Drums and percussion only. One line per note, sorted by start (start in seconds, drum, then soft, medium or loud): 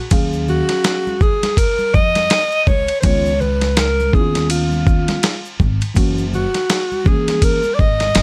0.10 kick loud
0.10 ride medium
0.10 maracas medium
0.33 maracas soft
0.48 low conga medium
0.48 maracas soft
0.69 snare soft
0.69 ride medium
0.69 maracas soft
0.84 snare loud
0.84 hi-hat pedal soft
0.84 ride medium
0.84 maracas medium
1.07 high conga medium
1.07 maracas soft
1.21 kick medium
1.21 high conga soft
1.21 low conga medium
1.21 maracas soft
1.43 snare soft
1.43 ride medium
1.43 high conga medium
1.43 maracas soft
1.57 kick medium
1.57 ride medium
1.57 maracas medium
1.79 high conga soft
1.79 maracas soft
1.94 kick loud
1.94 maracas soft
2.15 snare soft
2.15 ride medium
2.15 high conga medium
2.15 maracas soft
2.30 snare loud
2.30 hi-hat pedal medium
2.30 ride medium
2.30 maracas medium
2.51 maracas soft
2.67 kick medium
2.67 low conga medium
2.67 maracas soft
2.87 ride medium
2.87 maracas soft
3.02 kick loud
3.02 ride medium
3.02 maracas medium
3.25 maracas soft
3.41 low conga medium
3.41 maracas soft
3.61 snare soft
3.61 ride medium
3.61 maracas soft
3.77 snare loud
3.77 hi-hat pedal soft
3.77 ride medium
3.77 maracas medium
4.00 high conga medium
4.00 maracas soft
4.13 kick medium
4.13 high conga soft
4.13 low conga medium
4.13 maracas soft
4.35 snare soft
4.35 ride medium
4.35 high conga medium
4.35 maracas soft
4.50 ride medium
4.50 maracas medium
4.71 high conga soft
4.71 maracas soft
4.87 kick medium
4.87 maracas soft
5.08 snare soft
5.08 ride medium
5.08 high conga medium
5.08 maracas soft
5.23 snare loud
5.23 hi-hat pedal soft
5.23 ride medium
5.23 maracas medium
5.45 maracas soft
5.60 kick medium
5.60 low conga medium
5.60 maracas soft
5.81 ride medium
5.81 maracas soft
5.95 kick loud
5.95 ride medium
5.95 maracas medium
6.18 maracas soft
6.33 low conga medium
6.33 maracas soft
6.54 snare soft
6.54 ride medium
6.54 maracas soft
6.70 snare loud
6.70 hi-hat pedal soft
6.70 ride medium
6.70 maracas medium
6.92 high conga medium
6.92 maracas soft
7.05 kick medium
7.05 high conga soft
7.05 low conga medium
7.05 maracas soft
7.28 snare soft
7.28 ride medium
7.28 high conga medium
7.28 maracas soft
7.42 kick medium
7.42 ride medium
7.42 maracas medium
7.63 high conga soft
7.63 maracas soft
7.79 kick loud
7.79 maracas soft
8.00 snare soft
8.00 ride soft
8.00 high conga medium
8.00 maracas soft
8.15 snare loud
8.15 hi-hat pedal medium
8.15 ride medium
8.15 maracas soft